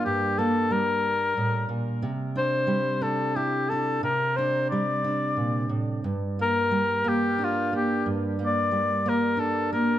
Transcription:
<<
  \new Staff \with { instrumentName = "Cor anglais" } { \time 3/4 \key g \minor \tempo 4 = 90 g'8 a'8 bes'4. r8 | r8 c''4 a'8 g'8 a'8 | bes'8 c''8 d''4. r8 | r8 bes'4 g'8 f'8 g'8 |
r8 d''4 bes'8 a'8 bes'8 | }
  \new Staff \with { instrumentName = "Steel-string acoustic guitar" } { \time 3/4 \key g \minor << { <bes d'>8 bes4 r4. | r8 d'4 d'8 e'8 d'8 | r8 d'4 d'4. | r8 bes4 bes8 d'8 bes8~ |
bes8 bes4 bes8 d'8 bes8 | } \\ { g,4 g4 a,8 bes,8 | c4 g2 | c4 g4 bes,8 a,8 | g,4 g2 |
g,4 g2 | } >> }
>>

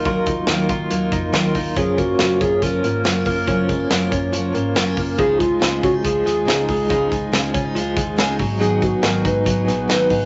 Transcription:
<<
  \new Staff \with { instrumentName = "Soft synth lead" } { \time 4/4 \key des \mixolydian \tempo 4 = 140 bes'4 r2. | aes'8 ges'4 aes'8 bes'4. bes'8~ | bes'4 r2. | aes'8 f'4 ges'8 aes'4. aes'8~ |
aes'4 r2. | aes'8 ges'8 bes'8 ces''2~ ces''8 | }
  \new Staff \with { instrumentName = "Steel-string acoustic guitar" } { \time 4/4 \key des \mixolydian <ees ges ees' f' bes'>8 <ees' f' bes'>8 <ees ges ees' f' bes'>8 <ees' f' bes'>8 <ges ees' f' bes'>8 <ees' f' bes'>8 <ees ges ees' f' bes'>8 <ees' f' bes'>8 | <ges des' f' bes'>8 <des' f' bes'>8 <ges des' f' bes'>8 <des' f' bes'>8 <ges des' f' bes'>8 <des' f' bes'>8 <ges des' f' bes'>8 <des' f' bes'>8 | <ges des' f' bes'>8 <des' f' bes'>8 <ges des' f' bes'>8 <des' f' bes'>8 <ges des' f' bes'>8 <des' f' bes'>8 <ges des' f' bes'>8 <des' f' bes'>8 | <des aes ees' f' aes'>8 <ees' f' aes'>8 <des aes ees' f' aes'>8 <ees' f' aes'>8 <aes ees' f' aes'>8 <ees' f' aes'>8 <des aes ees' f' aes'>8 <ees' f' aes'>8 |
<des aes ees' f' aes'>8 <ees' f' aes'>8 <des aes ees' f' aes'>8 <ees' f' aes'>8 <aes ees' f' aes'>8 <ees' f' aes'>8 <des aes ees' f' aes'>8 <ges ces' ees' aes'>8 | <aes, ees ges ces' ees' aes'>8 <ges ces' ees' aes'>8 <aes, ees ges ces' ees' aes'>8 <ges ces' ees' aes'>8 <ges ces' ees' aes'>8 <ges ces' ees' aes'>8 <aes, ees ges ces' ees' aes'>8 <ges ces' ees' aes'>8 | }
  \new Staff \with { instrumentName = "Clean electric guitar" } { \time 4/4 \key des \mixolydian <ges bes ees' f'>8 ees'8 bes8 f'8 bes8 ees'8 f'8 ees'8 | <f des'>8 bes8 f8 des'8 f8 bes8 ces'16 des'16 bes8 | <f des'>8 aes16 bes16 f8 des'8 f8 bes8 ces'16 des'16 bes8 | <f ees'>8 aes8 f8 des'16 ees'16 f8 aes8 ees'8 aes8 |
<f ees'>8 aes8 f8 des'16 ees'16 f8 aes8 des'16 ees'16 ges8 | <ges ees'>8 ces'8 ges8 ees'8 ges8 ces'8 ees'8 ces'8 | }
  \new Staff \with { instrumentName = "Picked electric bass" } { \clef bass \time 4/4 \key des \mixolydian ees,4 ees,8 ees8 ees,8 f,8 ees,8 ees,8 | ges,,4 ges,,8 ges,8 ges,,8 aes,,8 ges,,8 ges,,8 | ges,,4 ges,,8 ges,8 ges,,8 aes,,8 ges,,8 ges,,8 | des,4 des,8 des8 des,8 ees,8 des,8 des,8 |
des,4 des,8 des8 des,8 ees,8 des,8 aes,,8~ | aes,,4 aes,,8 aes,8 aes,,8 bes,,8 aes,,8 aes,,8 | }
  \new DrumStaff \with { instrumentName = "Drums" } \drummode { \time 4/4 <hh bd>8 <hh bd>8 <hh sn>8 <hh bd>8 hh8 <hh bd>8 <hh sn>8 <hho bd>8 | <hh bd>8 <hh bd>8 <hh sn>8 <hh bd>8 <hh bd>8 hh8 <hh sn>8 <hho bd>8 | <hh bd>8 <hh bd>8 <hh sn>8 <hh bd>8 hh8 hh8 <hh sn>8 <hho bd>8 | <hh bd>8 <hh bd>8 <hh sn>8 <hh bd>8 <hh bd>8 <hh sn>8 <hh sn>8 <hho bd>8 |
<hh bd>8 <hh bd>8 <hh sn>8 <hh bd>8 hh8 <hh bd>8 <hh sn>8 <hho bd>8 | hh8 <hh bd>8 <hh sn>8 <hh bd>8 <hh bd>8 <hh sn>8 <hh sn>8 <hho bd>8 | }
>>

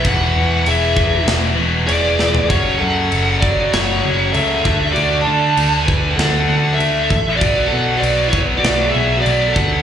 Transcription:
<<
  \new Staff \with { instrumentName = "Lead electric guitar" } { \time 4/4 \key d \lydian \tempo 4 = 98 fis''4 e''4 r4 d''4 | cis''8 fis''4 d''8 cis''4 e''4 | d''8 a''4 gis''8 fis''4 e''4 | d''8 fis''8 d''8 cis''8 d''8 e''8 d''8 fis''8 | }
  \new Staff \with { instrumentName = "Lead electric guitar" } { \time 4/4 \key d \lydian b'4 gis'4 r4 gis'4 | fis'8 a'4 fis'8 fis'4 a'4 | fis'8 d''4 b'8 a'4 a'4 | fis'8 a'8 fis'8 e'8 fis'8 gis'8 fis'8 a'8 | }
  \new Staff \with { instrumentName = "Distorted electric guitar" } { \clef bass \time 4/4 \key d \lydian <e, b, e>2~ <e, b, e>8 <e, b, e>8 <e, b, e>4 | <fis, cis fis>2~ <fis, cis fis>8 <fis, cis fis>8 <fis, cis fis>8 <d a d'>8~ | <d a d'>2 <d a d'>8 <d a d'>4 r8 | <b, fis b>2~ <b, fis b>8 <b, fis b>8 <b, fis b>4 | }
  \new Staff \with { instrumentName = "Distorted electric guitar" } { \clef bass \time 4/4 \key d \lydian <e, b, e>4. <e, b, e>2~ <e, b, e>8 | <fis, cis fis>4. <fis, cis fis>2 <d a d'>8~ | <d a d'>4 <d a d'>2~ <d a d'>8 r8 | <b, fis b>4. <b, fis b>2~ <b, fis b>8 | }
  \new Staff \with { instrumentName = "Picked electric bass" } { \clef bass \time 4/4 \key d \lydian e,,8 e,8 e,,4 e,,8 e,,8 e,,8 e,,8 | fis,,8 fis,8 fis,,4 fis,,8 fis,,8 cis,8 d,8 | d,8 d8 d,4 d,8 d,8 d,8 a,,8 | b,,8 b,8 b,,4 b,,8 b,,8 b,,8 d,8 | }
  \new DrumStaff \with { instrumentName = "Drums" } \drummode { \time 4/4 <cymc bd>4 cymc8 bd8 <cymc sn>4 cymc8 sn16 tomfh16 | <cymc bd>4 cymc8 bd8 <cymc sn>4 cymc8 bd8 | cymc4 cymc8 bd8 <cymc sn>4 cymc8 bd8 | <cymc bd>4 cymc8 bd8 <cymc sn>4 cymc8 bd8 | }
>>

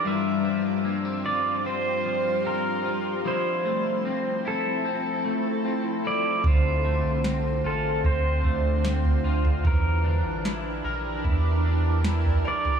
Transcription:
<<
  \new Staff \with { instrumentName = "Synth bell" } { \time 4/4 \key d \minor \tempo 4 = 75 r1 | r1 | r8 a''2~ a''16 r4 r16 | r2. r8 d''8 | }
  \new Staff \with { instrumentName = "Pedal steel guitar" } { \time 4/4 \key d \minor e''4. d''8 c''4 bes'4 | c''4. a'2 d''8 | c''4. a'8 c''2 | bes'2 r4. d''8 | }
  \new Staff \with { instrumentName = "Ambient pad" } { \time 4/4 \key d \minor <g d' f' c''>1 | <f c' e' a'>1 | <d d' f' c''>1 | <e d' g' bes'>1 | }
  \new Staff \with { instrumentName = "Clean electric guitar" } { \time 4/4 \key d \minor <g, f'>8 f8 bes16 c'16 f'8 c'8 f8 c'8 f'8 | <f e'>8 a8 c'8 e'8 c'8 a8 c'8 e'8 | <d f'>8 a8 c'8 f'8 c'8 a8 c'8 f'8 | <e bes'>8 d'8 e'8 bes'8 e'8 d'8 e'8 bes'8 | }
  \new Staff \with { instrumentName = "Analog synth bass" } { \clef bass \time 4/4 \key d \minor r1 | r1 | d,8. c,8. a,,8 d,4. d,8 | e,8. a,,8. bes,,8 e,4. r8 | }
  \new DrumStaff \with { instrumentName = "Drums" } \drummode { \time 4/4 r4 r4 r4 r4 | r4 r4 r4 r4 | <bd tomfh>4 sn4 <bd tomfh>8 bd8 sn16 tomfh8 tomfh16 | <bd tomfh>4 sn4 <bd tomfh>4 sn16 tomfh8 tomfh16 | }
>>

